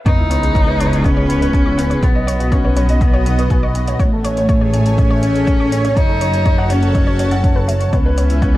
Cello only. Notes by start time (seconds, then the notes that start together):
0.05 D#4
1.04 C#4
2.03 B3
2.53 C#4
3.02 B3
4.00 A3
4.99 C#4
5.97 D#4
6.72 C#4
7.94 C#4